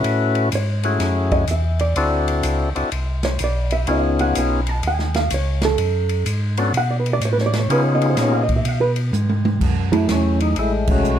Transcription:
Already playing: tonewheel organ A3 C#4 E4 F#4 B4
0.04 tonewheel organ A2, ride
0.35 ride
0.52 tonewheel organ G#2, hollow-body jazz guitar C#5, hi-hat pedal, ride
0.83 tonewheel organ A3 C#4 E4 F#4 G#4, ride
1.00 tonewheel organ F#2, snare, ride
1.31 hollow-body jazz guitar D#5, kick, ride
1.48 tonewheel organ E2, hollow-body jazz guitar E5, hi-hat pedal, ride
1.79 hollow-body jazz guitar D5, ride
1.96 tonewheel organ D2 C4 D4 E4 F#4 A4, ride
2.28 ride
2.43 tonewheel organ C#2, hi-hat pedal, ride
2.75 tonewheel organ C#2 C4 D4 E4 F#4 A4, ride
2.92 tonewheel organ C2, ride
3.23 hollow-body jazz guitar C#5, snare, ride
3.39 tonewheel organ B1, hi-hat pedal, ride
3.44 hollow-body jazz guitar D5
3.71 hollow-body jazz guitar E5, ride
3.87 tonewheel organ C#2 B3 C#4 D#4 F4 G#4, ride
3.91 hollow-body jazz guitar F5
4.19 hollow-body jazz guitar F#5, ride
4.35 tonewheel organ B1, hollow-body jazz guitar G#5, hi-hat pedal, ride
4.67 hollow-body jazz guitar A5, ride
4.83 tonewheel organ D#2, ride
4.87 hollow-body jazz guitar G#5
4.99 snare
5.14 hollow-body jazz guitar F5, snare, ride
5.30 tonewheel organ C#2, hollow-body jazz guitar C#5, hi-hat pedal, ride
5.62 hollow-body jazz guitar A4, snare, ride
5.78 tonewheel organ F#2, ride
6.09 ride
6.26 tonewheel organ G#2, hi-hat pedal, ride
6.57 tonewheel organ B3 C#4 D4 F#4 A4, ride
6.74 tonewheel organ B2, hollow-body jazz guitar F#5, ride
6.91 hollow-body jazz guitar D5
7.00 hollow-body jazz guitar B4
7.06 ride
7.13 hollow-body jazz guitar D5
7.21 tonewheel organ A2, hi-hat pedal, ride
7.25 hollow-body jazz guitar C#5
7.33 hollow-body jazz guitar B4
7.38 hollow-body jazz guitar C#5, snare
7.46 hollow-body jazz guitar D5
7.53 snare, ride
7.60 hollow-body jazz guitar C#5
7.70 tonewheel organ C#3 B3 C#4 D#4 F4 G#4, hollow-body jazz guitar B4, ride
7.85 hollow-body jazz guitar C#5
7.95 hollow-body jazz guitar D#5
8.02 ride
8.10 hollow-body jazz guitar C5
8.17 tonewheel organ A#2, snare, hi-hat pedal, ride
8.22 hollow-body jazz guitar C#5
8.33 hollow-body jazz guitar F5
8.43 hollow-body jazz guitar D#5
8.49 kick, ride
8.56 hollow-body jazz guitar E5
8.65 tonewheel organ B2, hollow-body jazz guitar F5, ride
8.81 hollow-body jazz guitar B4
8.96 ride
9.13 tonewheel organ G#2, hi-hat pedal, high tom
9.30 high tom
9.45 high tom
9.61 tonewheel organ F#2, kick, crash
9.92 hollow-body jazz guitar F#3 A3 E4 G#4, ride
10.09 tonewheel organ E2 C#4, snare, hi-hat pedal, ride
10.40 tonewheel organ D#4, ride
10.56 tonewheel organ A1 G#3 A3 E4, ride
10.87 tonewheel organ A3 C#4 F#4, kick, crash
11.04 tonewheel organ B1, hi-hat pedal

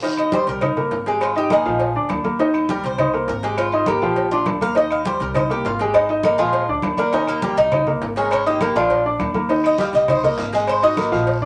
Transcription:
0.02 grand piano D#3 D#4 D#5, cuban tres F5, cowbell, high conga, low agogo
0.17 cuban tres D#5, high conga, low agogo, claves
0.32 grand piano G3 G4 G5, cuban tres C5, cowbell, high conga, low timbale
0.47 upright bass C2, cuban tres A#4, cowbell, high conga
0.61 grand piano D#4 D#5 D#6, cowbell, high conga, low conga, low agogo, claves
0.77 grand piano A#3 A#4 A#5, high conga, low conga, low agogo
0.91 upright bass G#1, cowbell, high conga, low timbale
1.06 grand piano G#3 G#4 G#5, cuban tres G4, cowbell, high conga
1.21 cuban tres F4, cowbell, high conga, low agogo, claves
1.36 grand piano D#4 D#5 D#6, cuban tres G4, high conga, low agogo
1.50 grand piano A#3 A#4 A#5, cuban tres D#4 G#4, cowbell, high conga, low timbale, low agogo, claves
1.66 upright bass A#1, grand piano F3 F4 F5, low agogo
1.79 cowbell, high conga
1.95 upright bass D2, grand piano D4 D5 D6, high conga
2.09 upright bass D#2, cowbell, high conga, low timbale, low agogo, claves
2.24 grand piano A#3 A#4 A#5, high conga, low agogo
2.39 grand piano D#3 D#4 D#5, cowbell, high conga, low agogo
2.54 high conga, low agogo, claves
2.69 grand piano G3 G4 G5, cuban tres A#4, cowbell, high conga, low timbale
2.84 upright bass C2, cuban tres C5, cowbell, high conga
2.98 grand piano D#4 D#5 D#6, cowbell, high conga, low conga, low agogo, claves
3.13 grand piano A#3 A#4 A#5, high conga, low agogo
3.28 upright bass G#1, cuban tres A#4, cowbell, high conga, low timbale
3.43 grand piano G#3 G#4 G#5, cuban tres G4, cowbell, high conga
3.57 cuban tres F4, cowbell, high conga, low agogo, claves
3.72 grand piano D#4 D#5 D#6, high conga, low agogo
3.86 grand piano A#3 A#4 A#5, cuban tres G4, cowbell, high conga, low timbale, low agogo, claves
4.01 upright bass A#1, grand piano F3 F4 F5, low agogo
4.16 cowbell, high conga
4.31 grand piano D4 D5 D6, cuban tres F4, high conga
4.46 upright bass D#2, cowbell, high conga, low timbale, low agogo, claves
4.61 grand piano A#3 A#4 A#5, cuban tres F5, high conga, low agogo
4.75 grand piano D#3 D#4 D#5, cuban tres D#5, cowbell, high conga, low agogo
4.90 cuban tres F5, high conga, low agogo, claves
5.05 grand piano G3 G4 G5, cuban tres C5, cowbell, high conga, low timbale
5.20 upright bass C2, cuban tres A#4, cowbell, high conga
5.34 grand piano D#4 D#5 D#6, cuban tres C5, cowbell, high conga, low conga, low agogo, claves
5.50 grand piano A#3 A#4 A#5, cuban tres G4, high conga, low agogo
5.64 upright bass G#1, cuban tres F4, cowbell, high conga, low timbale
5.79 grand piano G#3 G#4 G#5, cuban tres G4, cowbell, high conga
5.94 cuban tres D#4, cowbell, high conga, low agogo, claves
6.09 grand piano D#4 D#5 D#6, high conga, low agogo
6.23 grand piano A#3 A#4 A#5, cuban tres D#4, cowbell, high conga, low timbale, low agogo, claves
6.38 upright bass A#1, grand piano F3 F4 F5, cuban tres G#3 F4, low agogo
6.53 cowbell, high conga
6.68 upright bass D2, grand piano D4 D5 D6, high conga
6.82 upright bass D#2, cowbell, high conga, low timbale, low agogo, claves
6.97 grand piano A#3 A#4 A#5, cuban tres D4 A#4, high conga, low agogo
7.12 grand piano D#3 D#4 D#5, cuban tres C#4 A#4, cowbell, high conga, low agogo
7.27 cuban tres A#3 G4, high conga, low agogo, claves
7.42 grand piano G3 G4 G5, cuban tres A#3 G4, cowbell, high conga, low timbale
7.57 upright bass C2, cuban tres D#4, cowbell, high conga
7.72 grand piano D#4 D#5 D#6, cowbell, high conga, low conga, low agogo, claves
7.87 grand piano A#3 A#4 A#5, high conga, low conga, low agogo
8.02 upright bass G#1, cowbell, high conga, low timbale
8.16 grand piano G#3 G#4 G#5, cuban tres C#4 A#4, cowbell, high conga
8.31 cuban tres C#4 A#4, cowbell, high conga, low agogo, claves
8.46 cuban tres A#3 G4, grand piano D#4 D#5 D#6, high conga, low agogo
8.61 cuban tres A#3 G4, grand piano A#3 A#4 A#5, cowbell, high conga, low timbale, low agogo, claves
8.75 upright bass A#1, grand piano F3 F4 F5, cuban tres D4 F4, low agogo
8.90 cowbell, high conga
9.05 grand piano D4 D5 D6, high conga
9.19 upright bass D#2, cowbell, high conga, low timbale, low agogo, claves
9.34 grand piano A#3 A#4 A#5, high conga, low agogo
9.49 grand piano D#3 D#4 D#5, cowbell, high conga, low agogo, long guiro
9.64 cuban tres D#5, high conga, low agogo, claves
9.78 grand piano G3 G4 G5, cuban tres F5, cowbell, high conga, low timbale, short guiro
9.93 upright bass C2, cuban tres D#5, cowbell, high conga, short guiro
10.08 grand piano D#4 D#5 D#6, cuban tres C5, cowbell, high conga, low conga, low agogo, long guiro, claves
10.23 grand piano A#3 A#4 A#5, cuban tres D#5, high conga, low conga, low agogo
10.38 upright bass G#1, cuban tres F5, cowbell, high conga, low timbale, short guiro
10.53 grand piano G#3 G#4 G#5, cuban tres D#5, cowbell, high conga, short guiro
10.67 cuban tres C5, cowbell, high conga, low agogo, long guiro, claves
10.82 grand piano D#4 D#5 D#6, cuban tres F#4 D#5, high conga, low agogo
10.97 grand piano A#3 A#4 A#5, cowbell, high conga, low timbale, low agogo, short guiro, claves
11.12 upright bass A#1, grand piano F3 F4 F5, low agogo, short guiro
11.27 cowbell, high conga, long guiro
11.42 upright bass D2, grand piano D4 D5, high conga

